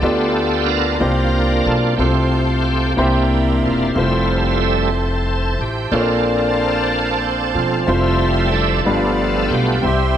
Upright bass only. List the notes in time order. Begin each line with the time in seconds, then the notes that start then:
0.02 D2
1.01 C2
1.66 B1
1.99 C2
2.98 C2
3.63 E1
3.95 F1
5.59 A1
5.92 A#1
7.55 E1
7.88 F1
8.86 G1
9.51 B1
9.83 C2